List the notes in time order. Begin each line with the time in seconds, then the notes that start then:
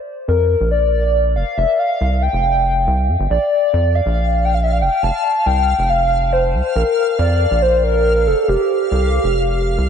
0.28 F2 A#4
0.60 A#1
0.71 D5
1.36 F1 F5
1.57 F1 E5
1.79 F5
2.01 C2
2.22 G5
2.33 F1
2.87 C2
3.09 F2
3.20 G1
3.30 A#1 D5 F5
3.73 F2
3.95 F5
4.06 A#1
4.45 G5
4.54 F5
4.63 E5
4.72 F5
4.81 F1 G5
5.03 F1 A5
5.46 C2 G5
5.79 F1
5.89 F5
6.32 C5
6.54 C2
6.76 A#1 A#4
7.19 F2 D5
7.51 A#1
7.62 C5
7.84 A#4
8.27 F1 A4
8.41 A4
8.48 F1 G4
8.91 C2
9.24 F1
9.78 C2